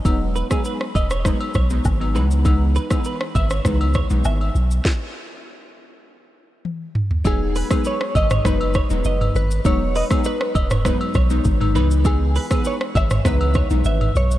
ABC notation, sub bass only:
X:1
M:4/4
L:1/16
Q:1/4=100
K:E
V:1 name="Sub bass" clef=bass
E,,,3 z3 E,,,3 z B,,,2 G,,,2 C,,2- | C,,3 z3 G,,,2 C,,3 B,,, G,,,2 B,,,2 | z16 | E,,,3 z3 G,,,2 F,,,3 E,,, F,,,2 G,,,2 |
E,,,3 z3 E,,,3 z B,,,2 G,,,2 C,,2- | C,,3 z3 G,,,2 C,,3 B,,, G,,,2 B,,,2 |]